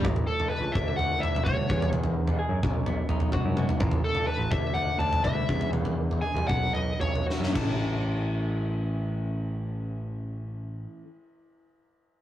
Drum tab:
CC |----------------|----------------|----------------|--------------x-|
SD |----------------|----------------|----------------|------------oo--|
T2 |------------o-o-|------------o-o-|------------o-o-|----------------|
FT |oo-o--o-o-oo---o|oo-o--o-o-oo---o|oo-o--o-o-oo---o|oo-o-oo-o-oo----|
BD |o-----o-----o-o-|------o-----o---|o-----o-----o-o-|------o-------o-|

CC |----------------|----------------|
SD |----------------|----------------|
T2 |----------------|----------------|
FT |----------------|----------------|
BD |----------------|----------------|